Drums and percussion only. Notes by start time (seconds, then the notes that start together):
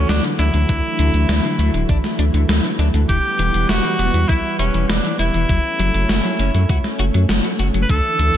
0.09 snare, closed hi-hat
0.24 closed hi-hat
0.39 closed hi-hat
0.54 closed hi-hat
0.69 kick, closed hi-hat
0.99 closed hi-hat
1.14 closed hi-hat
1.29 snare, closed hi-hat
1.59 closed hi-hat
1.74 closed hi-hat
1.89 kick, closed hi-hat
2.04 snare
2.19 closed hi-hat
2.34 closed hi-hat
2.49 snare, closed hi-hat
2.64 closed hi-hat
2.79 closed hi-hat
2.94 closed hi-hat
3.09 kick, closed hi-hat
3.39 closed hi-hat
3.54 closed hi-hat
3.69 snare, closed hi-hat
3.99 closed hi-hat
4.14 closed hi-hat
4.29 kick, closed hi-hat
4.59 closed hi-hat
4.74 closed hi-hat
4.90 snare, closed hi-hat
5.05 closed hi-hat
5.19 closed hi-hat
5.34 closed hi-hat
5.49 kick, closed hi-hat
5.80 closed hi-hat
5.94 closed hi-hat
6.09 snare, closed hi-hat
6.39 closed hi-hat
6.55 closed hi-hat
6.69 kick, closed hi-hat
6.84 snare
6.99 closed hi-hat
7.14 closed hi-hat
7.29 snare, closed hi-hat
7.44 closed hi-hat
7.59 closed hi-hat
7.74 closed hi-hat
7.89 kick, closed hi-hat
8.19 closed hi-hat